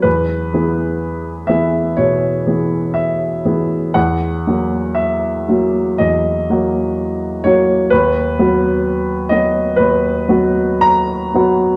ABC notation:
X:1
M:4/4
L:1/8
Q:1/4=62
K:B
V:1 name="Grand piano"
B3 e c2 e2 | f2 e2 d3 c | B3 d B2 a2 |]
V:2 name="Grand piano"
E,, [E,B,G]2 [E,B,G] B,, [E,B,G]2 [E,B,G] | E,, [F,A,F]2 [F,A,F] E,, [F,A,F]2 [F,A,F] | D,, [F,B,F]2 [F,B,F] D,, [F,B,F]2 [F,B,F] |]